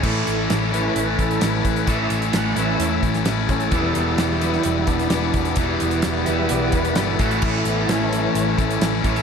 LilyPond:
<<
  \new Staff \with { instrumentName = "Steel-string acoustic guitar" } { \time 4/4 \key a \mixolydian \tempo 4 = 130 <a, e a cis' e' a'>8. <a cis' e' a'>16 <a, e a cis' e' a'>16 <a cis' e' a'>8 <a cis' e' a'>8 <a cis' e' a'>16 <a cis' e' a'>8 <a, e a cis' e' a'>16 <a cis' e' a'>16 <a cis' e' a'>16 <a cis' e' a'>16 | <a, e a cis' e' a'>8. <a cis' e' a'>16 <a, e a cis' e' a'>16 <a cis' e' a'>8 <a cis' e' a'>8 <a cis' e' a'>16 <a cis' e' a'>8 <a, e a cis' e' a'>16 <a cis' e' a'>16 <a e' a'>16 <a cis' e' a'>16 | <e b e' g'>8. <b e' g'>16 <e b e' g'>16 <b e' g'>8 <b e' g'>8 <b e' g'>16 <e b e' g'>8 <e b e' g'>16 <b e' g'>16 <e b g'>16 <b e' g'>16 | <e b e' g'>8. <b e' g'>16 <e b e' g'>16 <b e' g'>8 <b e' g'>8 <b e' g'>16 <e b e' g'>8 <e b e' g'>16 <b e' g'>16 <a cis' e' a'>16 <a cis' e' a'>16 |
<a, e a cis' e' a'>8. <a cis' e' a'>16 <a, e a cis' e' a'>16 <a cis' e' a'>8 <a cis' e' a'>8 <a cis' e' a'>16 <a cis' e' a'>8 <a, e a cis' e' a'>16 <a cis' e' a'>16 <a cis' e' a'>16 <cis' e' a'>16 | }
  \new Staff \with { instrumentName = "Tonewheel organ" } { \time 4/4 \key a \mixolydian r4. b'4 a'8 b'4 | e''8 r8 <eis'' fis''>8 e''4 r4 <cis' gis' a'>8 | <e' a'>8 <e' a'>8 <g e'>8 <g e'>8 <g e'>8 <b d'>8 <b d'>8 <b d'>8 | e'8 r4 <dis'' e''>8 d''8 b'8 a'8 fis'8 |
e'8 b8 r8 a2~ a8 | }
  \new Staff \with { instrumentName = "Tonewheel organ" } { \time 4/4 \key a \mixolydian r4. <e a cis'>8 r2 | r4. <e a cis'>8 r2 | <e g b>8 r4 <e b>8 r2 | r8 <e g b>2 <e g b>8 r4 |
r4 <e a cis'>4. <e a cis'>8 r8 <e a cis'>8 | }
  \new Staff \with { instrumentName = "Distorted electric guitar" } { \time 4/4 \key a \mixolydian <a, e a cis' e'>4. <a, e a cis' e'>4. <a, e a cis' e'>4 | <a, e a cis' e'>4. <a, e a cis' e'>4. <a, e a cis' e'>4 | <e g b e'>4. <e g b e'>4. <e g b e'>4 | <e g b e'>4. <e g b e'>4. <e g b e'>8 <a, e a cis' e'>8~ |
<a, e a cis' e'>4 <a, e a cis' e'>4. <a, e a cis' e'>4 <a, e a cis' e'>8 | }
  \new Staff \with { instrumentName = "Overdriven electric guitar" } { \clef bass \time 4/4 \key a \mixolydian <a, e a>1 | <a, e a>1 | <e, b, e>1 | <e, b, e>2.~ <e, b, e>8 <a, e a>8~ |
<a, e a>2.~ <a, e a>8 <a, e a>8 | }
  \new Staff \with { instrumentName = "Picked electric bass" } { \clef bass \time 4/4 \key a \mixolydian a,,8 a,,8 a,,4 a,,8 a,,8 a,,8 a,,8 | a,,8 a,,8 a,,8 a,,8 e,8 a,,8 a,,8 a,,8 | e,,8 e,,8 e,,4 e,,8 e,,8 e,,8 e,,8 | e,,8 e,,8 e,,8 e,,8 b,,8 e,,8 g,,8 a,,8 |
a,,8 a,,8 a,,4 a,,8 a,,8 a,,8 a,,8 | }
  \new DrumStaff \with { instrumentName = "Drums" } \drummode { \time 4/4 <cymc bd>8 hh8 <hh sn>8 hh8 hh8 <hh bd>16 hh16 <hh sn>8 <hh bd>16 hh16 | <hh bd>8 hh16 hh16 <hh sn>8 hh8 hh8 <hh bd>16 <hh sn>16 <hh sn>8 <hh bd>16 hh16 | <hh bd>8 hh8 <hh sn>8 hh16 sn16 hh8 <hh bd>16 <hh sn>16 <hh sn>8 <hh bd>16 hh16 | <hh bd>8 hh16 hh16 <hh sn>8 hh8 hh8 <hh bd>16 hh16 <hh sn>8 <hh bd>16 hh16 |
<cymc bd>8 hh8 <hh sn>8 hh8 hh8 <hh bd>16 hh16 <hh sn>8 <hh bd>16 hh16 | }
>>